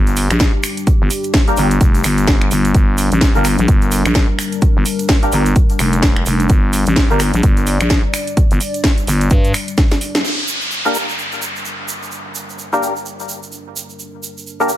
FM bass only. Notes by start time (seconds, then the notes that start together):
Already playing: G1
0.31 A#1
1.01 G1
1.57 G1
1.81 F1
2.04 G1
2.51 G1
2.74 G1
3.12 A1
3.35 G1
3.59 A#1
3.68 G1
4.06 A#1
4.76 G1
5.32 G1
5.79 F1
6.26 F1
6.50 G1
6.87 A1
7.10 G1
7.34 A#1
7.43 G1
7.80 A#1
8.51 G1
9.07 G1
9.31 G2